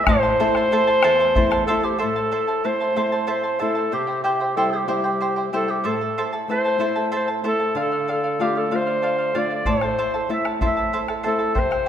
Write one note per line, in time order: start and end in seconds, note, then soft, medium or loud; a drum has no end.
0.04 0.69 A2 medium
0.04 0.23 E4 medium
0.04 1.66 C5 loud
0.04 0.23 C5 medium
0.04 0.23 E5 medium
0.04 bombo rim medium
0.04 bombo low medium
0.09 0.21 A5 medium
0.23 0.39 E4 soft
0.23 0.39 C5 soft
0.23 0.39 A5 medium
0.23 bombo rim soft
0.40 0.70 A3 soft
0.40 0.70 C4 soft
0.40 0.55 E4 medium
0.40 0.71 E4 medium
0.40 0.55 A4 medium
0.40 0.55 C5 medium
0.40 0.55 E5 medium
0.40 0.55 A5 medium
0.55 0.71 E4 soft
0.55 0.72 C5 medium
0.55 0.72 A5 medium
0.55 bombo rim medium
0.71 1.22 A3 soft
0.71 1.22 C4 soft
0.71 1.23 E4 soft
0.71 0.88 E4 medium
0.71 0.87 A4 medium
0.71 0.87 C5 medium
0.71 0.88 E5 medium
0.71 0.86 A5 medium
0.71 bombo rim soft
0.87 1.03 E4 soft
0.87 1.03 C5 medium
0.87 1.03 A5 medium
1.03 1.66 E2 medium
1.03 1.20 E4 medium
1.03 1.19 A4 medium
1.03 1.19 C5 medium
1.03 1.19 E5 medium
1.03 1.18 A5 medium
1.03 bombo rim medium
1.19 1.35 E4 soft
1.19 1.35 C5 medium
1.19 1.35 A5 medium
1.19 bombo rim soft
1.35 1.68 A3 medium
1.35 1.69 C4 soft
1.35 1.51 E4 medium
1.35 1.69 E4 soft
1.35 1.50 C5 medium
1.35 1.51 E5 medium
1.35 1.50 A5 medium
1.35 bombo low medium
1.51 1.67 E4 soft
1.51 1.67 C5 soft
1.51 1.67 A5 medium
1.51 bombo rim medium
1.66 1.94 A3 soft
1.66 1.95 C4 soft
1.66 1.84 E4 medium
1.66 1.86 A4 medium
1.66 1.83 A4 medium
1.66 1.83 C5 medium
1.66 1.83 E5 medium
1.66 1.82 A5 medium
1.66 bombo rim soft
1.70 1.95 E4 soft
1.83 1.98 E4 soft
1.83 1.99 G4 medium
1.83 1.98 C5 medium
1.83 1.98 A5 medium
1.98 3.89 A2 medium
1.98 2.15 E4 medium
1.98 2.15 A4 medium
1.98 2.67 A4 medium
1.98 2.15 C5 medium
1.98 2.15 E5 medium
1.98 2.15 A5 medium
2.16 2.31 E4 soft
2.16 2.31 C5 soft
2.16 2.31 A5 medium
2.31 2.47 E4 medium
2.31 2.47 A4 medium
2.31 2.47 C5 medium
2.31 2.48 E5 medium
2.31 2.46 A5 medium
2.48 2.63 E4 soft
2.48 2.63 C5 soft
2.48 2.64 A5 soft
2.64 2.95 A3 soft
2.64 2.96 C4 soft
2.64 2.80 E4 soft
2.64 2.96 E4 soft
2.64 2.80 C5 medium
2.64 3.29 C5 loud
2.64 2.80 E5 medium
2.64 2.79 A5 medium
2.80 2.95 E4 soft
2.80 2.95 C5 soft
2.80 2.96 A5 soft
2.96 3.58 A3 soft
2.96 3.59 C4 soft
2.96 3.12 E4 medium
2.96 3.59 E4 soft
2.96 3.12 A4 medium
2.96 3.11 C5 medium
2.96 3.12 E5 medium
2.96 3.11 A5 medium
3.12 3.27 E4 soft
3.12 3.26 C5 soft
3.12 3.26 A5 medium
3.27 3.43 E4 medium
3.27 3.43 A4 medium
3.27 3.43 C5 medium
3.27 3.59 C5 medium
3.27 3.43 E5 medium
3.27 3.42 A5 medium
3.43 3.58 E4 soft
3.43 3.58 C5 soft
3.43 3.59 A5 soft
3.59 3.92 A3 soft
3.59 3.92 C4 soft
3.59 3.75 E4 medium
3.59 3.92 E4 medium
3.59 3.75 A4 medium
3.59 3.90 A4 medium
3.59 3.75 C5 medium
3.59 3.76 E5 medium
3.59 3.74 A5 medium
3.75 3.91 E4 soft
3.75 3.91 C5 soft
3.75 3.91 A5 soft
3.91 5.80 C3 medium
3.91 4.07 E4 medium
3.91 4.23 G4 medium
3.91 4.07 C5 medium
3.91 4.08 E5 medium
3.91 4.06 G5 medium
4.07 4.23 E4 soft
4.07 4.24 C5 soft
4.07 4.23 G5 soft
4.23 4.40 E4 medium
4.23 4.53 G4 medium
4.23 4.40 G4 medium
4.23 4.40 C5 medium
4.23 4.40 E5 medium
4.23 4.39 G5 medium
4.40 4.56 E4 soft
4.40 4.56 C5 soft
4.40 4.56 G5 soft
4.56 4.87 G3 soft
4.56 4.87 C4 soft
4.56 4.73 E4 medium
4.56 4.87 E4 soft
4.56 4.73 G4 medium
4.56 4.73 A4 medium
4.56 4.72 C5 medium
4.56 4.73 E5 medium
4.56 4.72 G5 medium
4.71 4.87 E4 soft
4.71 4.88 G4 medium
4.71 4.87 C5 soft
4.71 4.88 G5 soft
4.88 5.50 G3 soft
4.88 5.50 C4 soft
4.88 5.04 E4 medium
4.88 5.50 E4 medium
4.88 5.04 G4 medium
4.88 5.49 G4 medium
4.88 5.04 C5 medium
4.88 5.04 E5 medium
4.88 5.03 G5 medium
5.04 5.20 E4 soft
5.04 5.20 C5 soft
5.04 5.20 G5 medium
5.21 5.36 E4 medium
5.21 5.36 C5 medium
5.21 5.36 E5 medium
5.21 5.35 G5 medium
5.36 5.52 E4 soft
5.36 5.53 C5 soft
5.36 5.52 G5 medium
5.53 5.84 G3 soft
5.53 5.84 C4 soft
5.53 5.68 E4 medium
5.53 5.84 E4 soft
5.53 5.68 G4 medium
5.53 5.72 A4 medium
5.53 5.67 C5 medium
5.53 5.69 E5 medium
5.53 5.67 G5 medium
5.68 5.83 E4 soft
5.68 5.88 G4 medium
5.68 5.83 C5 soft
5.68 5.84 G5 soft
5.84 7.72 A2 medium
5.84 6.00 E4 medium
5.84 6.00 A4 medium
5.84 6.23 A4 medium
5.84 6.00 C5 medium
5.84 6.00 E5 medium
5.84 6.00 A5 medium
6.01 6.17 E4 soft
6.01 6.17 A4 soft
6.01 6.17 A5 soft
6.18 6.33 E4 medium
6.18 6.32 A4 medium
6.18 6.33 C5 medium
6.18 6.33 E5 medium
6.18 6.31 A5 medium
6.33 6.49 E4 soft
6.33 6.49 A4 soft
6.33 6.48 A5 medium
6.48 6.77 A3 soft
6.48 6.78 C4 soft
6.48 6.78 E4 soft
6.48 6.65 E4 medium
6.48 6.64 A4 medium
6.48 7.09 C5 medium
6.48 6.65 E5 medium
6.48 6.64 A5 medium
6.65 6.79 E4 soft
6.65 6.80 A4 soft
6.65 6.80 A5 soft
6.79 7.41 A3 soft
6.79 7.41 C4 soft
6.79 7.41 E4 medium
6.79 6.96 E4 medium
6.79 6.95 A4 medium
6.79 6.96 C5 medium
6.79 6.96 E5 medium
6.79 6.94 A5 medium
6.96 7.10 E4 soft
6.96 7.11 A4 soft
6.96 7.11 A5 medium
7.12 7.28 E4 medium
7.12 7.27 A4 medium
7.12 7.28 C5 medium
7.12 7.28 E5 medium
7.12 7.26 A5 medium
7.16 7.29 C5 medium
7.28 7.43 E4 soft
7.28 7.44 A4 soft
7.28 7.44 A5 medium
7.44 7.75 A3 soft
7.44 7.75 C4 soft
7.44 7.75 E4 soft
7.44 7.60 E4 medium
7.44 7.59 A4 medium
7.44 7.75 A4 loud
7.44 7.60 C5 medium
7.44 7.60 E5 medium
7.44 7.58 A5 medium
7.60 7.75 E4 soft
7.60 7.74 A4 soft
7.60 7.76 A5 soft
7.75 9.62 D3 medium
7.75 7.91 A4 medium
7.75 7.92 D5 medium
7.75 7.91 F5 medium
7.81 8.08 A4 medium
7.92 8.07 D5 soft
7.92 8.08 F5 soft
8.08 8.23 A4 medium
8.08 8.44 A4 medium
8.08 8.24 D5 medium
8.08 8.22 F5 medium
8.24 8.39 D5 soft
8.24 8.39 F5 soft
8.39 8.70 A3 soft
8.39 8.70 D4 soft
8.39 8.70 F4 soft
8.39 8.60 G4 medium
8.39 8.56 A4 medium
8.39 8.55 D5 medium
8.39 8.54 F5 medium
8.55 8.77 A4 medium
8.55 8.71 D5 soft
8.55 8.71 F5 soft
8.71 9.33 A3 soft
8.71 9.33 D4 soft
8.71 9.33 F4 soft
8.71 8.87 A4 medium
8.71 8.87 D5 medium
8.71 8.85 F5 medium
8.76 9.40 C5 medium
8.87 9.02 D5 soft
8.87 9.03 F5 soft
9.02 9.19 A4 medium
9.02 9.19 D5 medium
9.02 9.17 F5 medium
9.18 9.34 D5 soft
9.18 9.34 F5 soft
9.34 9.66 A3 soft
9.34 9.65 D4 soft
9.34 9.66 F4 soft
9.34 9.50 A4 medium
9.34 9.50 D5 medium
9.34 9.52 D5 medium
9.34 9.49 F5 medium
9.50 9.67 D5 soft
9.50 9.66 F5 soft
9.55 9.71 D5 medium
9.65 11.53 A2 medium
9.65 9.82 E4 medium
9.65 9.82 A4 medium
9.65 9.82 C5 medium
9.65 9.82 E5 medium
9.65 9.81 A5 medium
9.65 bombo low medium
9.70 10.32 C5 medium
9.81 9.98 E4 soft
9.81 9.98 A4 soft
9.81 9.98 A5 soft
9.81 bombo rim medium
9.98 10.14 E4 medium
9.98 10.13 A4 medium
9.98 10.14 C5 medium
9.98 10.14 E5 medium
9.98 10.13 A5 medium
10.14 10.29 E4 soft
10.14 10.29 A4 soft
10.14 10.30 A5 soft
10.29 10.60 A3 soft
10.29 10.61 C4 soft
10.29 10.61 E4 soft
10.29 10.45 E4 medium
10.29 10.44 A4 medium
10.29 10.46 E5 medium
10.29 10.47 E5 medium
10.29 10.44 A5 medium
10.45 10.61 E4 soft
10.45 10.61 A4 soft
10.45 10.61 A5 soft
10.45 bombo rim medium
10.61 11.23 A3 soft
10.61 11.23 C4 soft
10.61 10.77 E4 medium
10.61 11.23 E4 soft
10.61 10.77 A4 medium
10.61 10.77 C5 medium
10.61 10.77 E5 medium
10.61 10.76 A5 medium
10.61 bombo low medium
10.66 10.99 E5 medium
10.77 10.92 E4 soft
10.77 10.93 A4 soft
10.77 10.93 A5 medium
10.93 11.08 E4 medium
10.93 11.08 A4 medium
10.93 11.09 C5 medium
10.93 11.09 E5 medium
10.93 11.07 A5 medium
11.08 11.23 E4 soft
11.08 11.23 A4 soft
11.08 11.23 A5 soft
11.08 bombo rim medium
11.23 11.56 A3 soft
11.23 11.56 C4 soft
11.23 11.39 E4 medium
11.23 11.57 E4 soft
11.23 11.39 A4 medium
11.23 11.60 A4 medium
11.23 11.40 C5 medium
11.23 11.40 E5 medium
11.23 11.38 A5 medium
11.39 11.54 E4 soft
11.39 11.55 A4 soft
11.39 11.55 A5 soft
11.55 11.88 C3 medium
11.55 11.71 E4 medium
11.55 11.71 C5 medium
11.55 11.71 E5 medium
11.55 11.70 G5 medium
11.55 bombo low medium
11.59 11.88 C5 loud
11.71 11.85 E4 soft
11.71 11.86 C5 soft
11.71 11.86 G5 soft
11.71 bombo rim medium